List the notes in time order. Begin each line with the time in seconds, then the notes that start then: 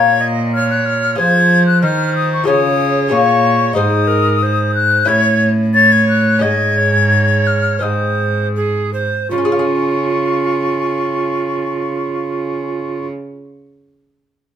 Already playing: A#2 F4 A#4 C#5 G#6
0.21 D#5
0.54 C#5 F6
0.71 F#6
0.86 F6
1.15 F3 F4 G#4 C5 G#6
1.20 F3
1.67 F#6
1.82 D#3 C5 F6
2.16 D#6
2.33 C#6
2.44 F4 G#4 C#5
2.48 C#3 D#6
3.08 A#2 F4 G#4 C#5
3.12 C#6
3.73 G#2 D#4 G#4 C5 D#6
4.07 A#4
4.43 C5
4.75 F#6
5.05 A2 C#4 E4 C#5 G#6
5.74 C#5 A6
5.92 G#6
6.09 F#6
6.39 G#2 C#4 G#4 D#5 G#6
6.43 G#2
6.78 C#5
7.47 F6
7.79 G#2 C4 G#4 C5 D#5 D#6
7.84 G#2
8.56 G#4
8.93 C5
9.30 C#3 F4 C#6
9.38 C#4
9.45 G#4
9.52 F5
9.59 G#4